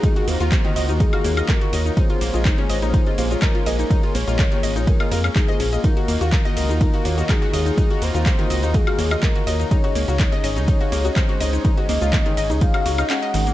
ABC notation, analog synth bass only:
X:1
M:4/4
L:1/16
Q:1/4=124
K:Ebdor
V:1 name="Analog synth bass" clef=bass
z2 E,, E,, z2 D,, E,, z2 E,, z3 E,, z | z2 B,,, B,,, z2 A,,, B,,, z2 B,,, z3 B,,, z | z2 B,,, B,,, z2 A,,, B,,, z2 F,, z3 B,,, z | z2 E,, E,, z2 D,, E,, z2 E,, z3 E,, z |
z2 E,, E,, z2 D,, E,, z2 E,, z3 E,, z | z2 D,, D,, z2 A,,, D,, z2 D,, z3 D,, z | z2 D,, D,, z2 A,,, D,, z2 D,, z3 A,,, z |]